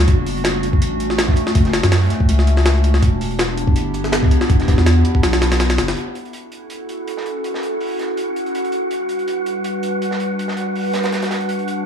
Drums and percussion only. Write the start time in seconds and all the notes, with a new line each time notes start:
0.08 kick, closed hi-hat
0.26 closed hi-hat, open hi-hat
0.37 closed hi-hat
0.44 snare, closed hi-hat
0.63 closed hi-hat
0.73 kick
0.82 closed hi-hat
1.00 closed hi-hat
1.10 snare
1.18 snare, closed hi-hat
1.28 kick, snare
1.36 closed hi-hat
1.47 snare
1.55 kick, closed hi-hat
1.65 snare, closed hi-hat
1.73 snare, closed hi-hat
1.83 snare, closed hi-hat
1.92 snare, closed hi-hat, open hi-hat
2.10 snare, closed hi-hat
2.20 kick
2.29 closed hi-hat
2.39 snare
2.47 closed hi-hat
2.56 snare, closed hi-hat
2.65 snare, closed hi-hat
2.75 closed hi-hat
2.84 closed hi-hat
2.94 snare
3.02 kick, closed hi-hat
3.21 closed hi-hat, open hi-hat
3.31 closed hi-hat
3.39 snare, closed hi-hat
3.58 closed hi-hat
3.67 kick
3.76 closed hi-hat
3.94 closed hi-hat
4.04 snare
4.12 snare, closed hi-hat
4.23 kick, snare
4.31 closed hi-hat
4.41 snare
4.49 kick, closed hi-hat
4.60 snare, closed hi-hat
4.68 kick, snare, closed hi-hat
4.78 snare
4.86 snare, closed hi-hat
5.05 closed hi-hat
5.15 kick
5.23 snare, closed hi-hat
5.33 snare, closed hi-hat
5.41 snare, closed hi-hat
5.52 snare, closed hi-hat
5.60 snare, closed hi-hat
5.70 snare, closed hi-hat
5.78 snare, closed hi-hat
5.88 snare, closed hi-hat
5.97 closed hi-hat
6.15 closed hi-hat
6.25 closed hi-hat
6.33 closed hi-hat
6.52 closed hi-hat
6.70 closed hi-hat
6.89 closed hi-hat
7.08 closed hi-hat
7.17 snare
7.26 closed hi-hat
7.44 closed hi-hat
7.54 snare
7.63 closed hi-hat
7.81 open hi-hat
7.99 snare, closed hi-hat
8.17 closed hi-hat
8.36 closed hi-hat
8.46 closed hi-hat
8.55 closed hi-hat
8.64 closed hi-hat
8.72 closed hi-hat
8.91 closed hi-hat
9.09 closed hi-hat
9.19 closed hi-hat
9.28 closed hi-hat
9.46 closed hi-hat
9.64 closed hi-hat
9.83 closed hi-hat
10.02 closed hi-hat
10.11 snare
10.20 closed hi-hat
10.39 closed hi-hat
10.48 snare
10.57 closed hi-hat
10.75 open hi-hat
10.93 snare, closed hi-hat
11.03 snare, closed hi-hat
11.12 snare, closed hi-hat
11.22 snare, closed hi-hat
11.31 snare, closed hi-hat
11.40 closed hi-hat
11.49 closed hi-hat
11.59 closed hi-hat
11.68 closed hi-hat